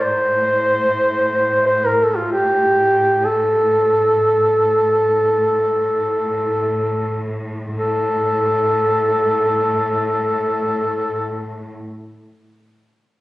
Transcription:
0.00 7.74 A2 soft
0.00 1.65 C5 loud
1.66 1.88 C5 medium
1.86 2.05 A#4 medium
2.03 2.18 A4 medium
2.16 2.30 F4 medium
2.32 3.26 G4 medium
3.25 7.27 A4 medium
7.76 11.73 A2 soft
7.76 11.75 A4 medium

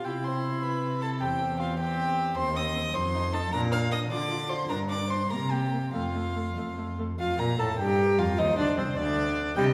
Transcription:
0.05 1.23 C3 medium
0.05 1.21 E4 medium
0.05 0.13 G4 medium
0.05 0.25 G5 medium
0.24 0.63 C5 medium
0.24 0.64 C6 medium
0.63 1.03 B4 medium
0.63 1.01 B5 medium
1.01 1.22 A4 medium
1.01 1.09 A5 medium
1.21 2.36 E2 medium
1.21 1.78 C4 medium
1.21 1.61 G4 medium
1.21 1.59 G5 medium
1.60 1.78 F4 medium
1.60 1.79 F5 medium
1.79 2.36 C4 medium
1.79 2.38 G4 medium
1.79 2.36 G5 medium
2.36 2.88 D#2 medium
2.36 2.45 C4 medium
2.36 2.55 C5 medium
2.36 2.58 C6 loud
2.56 2.64 C4 medium
2.56 2.95 D#5 medium
2.56 2.97 D#6 medium
2.76 2.83 C4 medium
2.94 3.46 F2 medium
2.94 3.03 D#4 medium
2.94 3.35 C5 medium
2.94 3.35 C6 loud
3.14 3.22 D#4 medium
3.33 3.41 D#4 medium
3.33 3.54 A4 medium
3.33 3.52 A5 medium
3.52 4.04 A#2 medium
3.52 3.61 D4 medium
3.52 3.73 A#4 medium
3.52 3.60 A#5 loud
3.72 3.80 D4 medium
3.72 3.91 F5 medium
3.72 3.80 F6 medium
3.91 4.00 D4 medium
3.91 3.99 D#5 medium
3.91 3.99 D#6 medium
4.10 4.62 D3 medium
4.10 4.19 F4 medium
4.10 4.51 D5 medium
4.10 4.51 D6 medium
4.31 4.39 F4 medium
4.49 4.58 F4 medium
4.49 4.71 C5 medium
4.49 4.69 C6 medium
4.69 5.23 G2 medium
4.69 4.78 D4 medium
4.69 4.89 A#4 medium
4.69 4.77 A#5 medium
4.90 4.98 D4 medium
4.90 5.09 D5 medium
4.90 5.12 D6 medium
5.10 5.18 D4 soft
5.10 5.30 C5 medium
5.10 5.32 C6 medium
5.30 5.86 C3 medium
5.30 5.38 A#3 medium
5.30 5.51 A#4 medium
5.30 5.53 A#5 medium
5.51 5.59 A#3 soft
5.51 5.93 G4 medium
5.51 5.93 G5 medium
5.73 5.81 A#3 soft
5.93 6.49 F2 medium
5.93 6.02 A3 soft
5.93 6.96 F4 medium
5.93 6.96 F5 medium
6.15 6.23 A3 soft
6.36 6.44 A3 soft
6.57 7.12 F2 medium
6.57 6.65 A3 soft
6.78 6.86 A3 soft
6.99 7.07 A3 soft
7.19 7.38 F2 medium
7.19 7.38 F4 medium
7.19 7.40 F5 medium
7.39 7.59 A#2 medium
7.39 7.58 A#4 medium
7.39 7.61 A#5 medium
7.59 7.79 A2 medium
7.59 7.67 A4 medium
7.59 7.78 A5 medium
7.79 8.18 G2 medium
7.79 8.20 G4 medium
7.79 8.40 A#4 medium
7.79 8.20 G5 medium
8.19 8.38 F2 medium
8.19 8.40 F4 medium
8.19 8.40 F5 medium
8.39 8.47 D#2 medium
8.39 8.57 D#4 medium
8.39 8.98 C5 medium
8.39 8.58 D#5 loud
8.58 8.66 D2 medium
8.58 8.79 D4 medium
8.58 8.77 D5 medium
8.78 8.86 C2 medium
8.78 8.97 C4 medium
8.78 8.97 C5 medium
8.97 9.55 D2 medium
8.97 9.55 D4 medium
8.97 9.56 D5 medium
8.97 9.55 D5 medium
9.56 9.65 C3 medium
9.56 9.73 G3 medium
9.56 9.73 D#5 loud
9.56 9.64 G5 loud

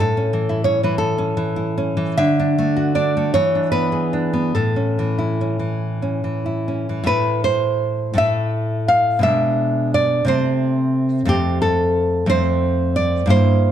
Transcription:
0.00 2.15 A2 medium
0.00 0.64 A4 medium
0.17 0.64 C#4 soft
0.33 0.82 E3 medium
0.49 1.55 E4 medium
0.64 1.17 C#4 soft
0.64 0.83 C#5 medium
0.83 1.36 E3 soft
0.83 0.98 B4 medium
0.98 2.14 A4 medium
1.18 1.76 C#4 medium
1.37 1.96 E3 medium
1.56 2.19 E4 medium
1.78 2.19 C#4 medium
1.97 2.18 E3 medium
2.17 3.30 D3 medium
2.17 2.92 E5 loud
2.40 2.94 D4 medium
2.58 3.16 A3 medium
2.77 3.34 F#4 medium
2.95 3.34 D4 medium
2.95 3.32 D5 medium
3.17 3.35 A3 medium
3.34 4.53 E3 medium
3.34 3.71 C#5 loud
3.55 4.12 D4 soft
3.72 4.32 B3 medium
3.72 4.52 B4 medium
3.92 4.54 G#4 medium
4.13 4.56 D4 soft
4.33 4.55 B3 soft
4.55 7.02 A2 medium
4.55 6.64 A4 medium
4.76 5.40 C#4 soft
4.99 5.58 E3 soft
5.19 6.45 E4 soft
5.41 6.01 C#4 soft
5.59 6.23 E3 soft
6.02 6.67 C#4 soft
6.24 6.88 E3 soft
6.46 7.05 E4 soft
6.68 7.06 C#4 soft
6.89 7.09 E3 soft
7.04 8.11 A2 medium
7.04 8.12 A3 medium
7.04 8.13 E4 medium
7.04 7.43 B4 loud
7.44 8.14 C5 medium
8.14 9.20 A2 medium
8.14 9.21 A3 medium
8.14 9.22 E4 medium
8.18 8.87 E5 loud
8.88 9.23 F5 medium
9.19 10.22 B2 medium
9.19 10.23 G#3 medium
9.19 10.24 D4 medium
9.23 9.90 E5 loud
9.94 10.27 D5 loud
10.25 11.25 C3 medium
10.25 11.25 A3 medium
10.25 11.26 C4 medium
10.25 11.26 C5 loud
11.25 12.24 F2 medium
11.25 12.25 A3 medium
11.25 12.25 C4 medium
11.25 11.61 G4 loud
11.62 12.26 A4 medium
12.26 13.25 F2 medium
12.26 13.25 A3 medium
12.26 13.27 C4 medium
12.26 12.93 C5 loud
12.96 13.28 D5 loud
13.26 13.72 G2 medium
13.26 13.72 A#3 medium
13.26 13.72 E4 medium
13.30 13.72 C5 loud

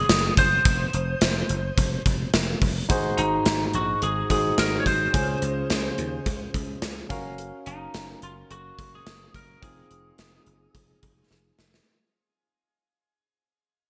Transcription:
0.00 0.34 G#4 medium
0.09 0.30 F#1 loud
0.09 snare loud
0.09 closed hi-hat medium
0.37 0.58 F#1 medium
0.37 2.02 C5 medium
0.37 kick medium
0.37 closed hi-hat medium
0.65 0.86 F1 loud
0.65 kick loud
0.65 closed hi-hat medium
0.93 1.14 F1 medium
0.93 closed hi-hat medium
1.21 1.42 F1 medium
1.21 snare loud
1.21 closed hi-hat medium
1.49 1.70 F#1 medium
1.49 closed hi-hat medium
1.78 1.98 F1 loud
1.78 kick medium
1.78 closed hi-hat medium
2.06 2.26 F1 loud
2.06 kick medium
2.06 closed hi-hat medium
2.34 2.54 F1 medium
2.34 snare loud
2.34 closed hi-hat medium
2.62 2.82 F1 medium
2.62 kick medium
2.62 open hi-hat medium
2.89 3.10 G#1 medium
2.89 3.70 G#2 medium
2.89 4.27 D#4 medium
2.89 4.27 F#4 medium
2.89 4.27 G#4 medium
2.89 4.28 C5 medium
2.89 kick loud
2.89 closed hi-hat medium
2.89 cowbell medium
3.18 3.38 G#1 medium
3.18 3.76 D#4 medium
3.18 closed hi-hat medium
3.46 3.66 G#1 medium
3.46 snare loud
3.46 closed hi-hat medium
3.46 cowbell medium
3.74 3.94 A#1 medium
3.74 4.03 F#4 medium
3.74 closed hi-hat medium
4.02 4.22 G#1 loud
4.02 4.29 G#4 medium
4.02 closed hi-hat medium
4.02 cowbell medium
4.29 4.50 G#1 medium
4.29 5.14 D#4 medium
4.29 5.14 F#4 soft
4.29 5.14 G#4 soft
4.29 4.59 G#4 medium
4.29 5.14 C5 medium
4.29 kick medium
4.29 closed hi-hat medium
4.29 cowbell medium
4.58 4.78 G#1 loud
4.58 4.80 A#4 medium
4.58 snare loud
4.58 closed hi-hat medium
4.58 cowbell medium
4.80 4.86 C#5 medium
4.86 5.06 G#1 medium
4.86 6.51 C5 medium
4.86 kick medium
4.86 closed hi-hat medium
5.13 5.34 C#2 loud
5.13 5.94 C#3 medium
5.13 7.06 C#4 medium
5.13 7.06 F4 medium
5.13 7.07 G#4 medium
5.13 7.07 C5 medium
5.13 kick loud
5.13 closed hi-hat medium
5.13 cowbell medium
5.42 5.62 C#2 medium
5.42 closed hi-hat medium
5.70 5.90 C#2 medium
5.70 snare loud
5.70 closed hi-hat medium
5.70 cowbell medium
5.98 6.18 D#2 medium
5.98 closed hi-hat medium
6.26 6.46 C#2 loud
6.26 kick medium
6.26 closed hi-hat medium
6.26 cowbell medium
6.54 6.75 C#2 medium
6.54 kick medium
6.54 closed hi-hat medium
6.54 cowbell medium
6.82 7.03 C#2 loud
6.82 snare loud
6.82 closed hi-hat medium
6.82 cowbell medium
7.09 7.51 F#1 medium
7.09 9.30 C#4 medium
7.09 9.31 F#4 medium
7.09 9.31 A#4 medium
7.09 9.30 F5 medium
7.09 kick medium
7.09 closed hi-hat medium
7.38 closed hi-hat medium
7.38 cowbell medium
7.66 7.87 F#1 medium
7.66 8.19 D#4 medium
7.66 closed hi-hat medium
7.94 8.15 F#1 loud
7.94 snare loud
7.94 closed hi-hat medium
7.94 cowbell medium
8.22 8.43 F#1 medium
8.22 8.31 F4 medium
8.22 closed hi-hat medium
8.50 8.71 F#1 medium
8.50 8.91 F#4 medium
8.50 closed hi-hat medium
8.50 cowbell medium
8.79 8.99 F#1 medium
8.79 kick medium
8.79 closed hi-hat medium
8.79 cowbell medium
8.95 9.36 G#4 medium
9.06 9.27 F#1 loud
9.06 snare loud
9.06 closed hi-hat medium
9.06 cowbell medium
9.34 9.55 F#1 medium
9.34 9.61 A#4 medium
9.34 kick medium
9.34 closed hi-hat medium
9.61 9.83 F1 medium
9.61 11.82 C4 medium
9.61 11.83 D#4 medium
9.61 11.83 F4 medium
9.61 11.27 G#4 medium
9.61 11.84 G#4 medium
9.61 kick loud
9.61 closed hi-hat medium
9.61 cowbell medium
9.91 10.11 F1 medium
9.91 closed hi-hat medium
10.18 10.39 F1 medium
10.18 snare loud
10.18 closed hi-hat medium
10.18 cowbell medium
10.46 10.67 F#1 medium
10.46 closed hi-hat medium
10.75 10.95 F1 loud
10.75 kick medium
10.75 closed hi-hat medium
10.75 cowbell medium
11.03 11.23 F1 medium
11.03 kick medium
11.03 closed hi-hat medium
11.03 cowbell medium
11.31 11.51 F1 medium
11.31 snare medium
11.31 cowbell medium
11.59 11.79 F1 medium
11.59 snare medium
11.74 snare medium

